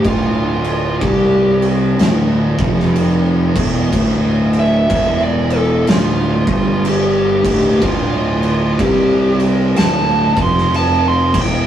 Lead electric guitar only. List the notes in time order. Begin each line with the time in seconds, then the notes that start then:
0.07 F4
1.03 G4
4.59 E5
5.23 D5
5.56 A4
5.88 F4
6.87 G4
7.84 F4
8.81 G4
9.77 A5
10.43 C6
10.76 A5
11.08 C6
11.41 G5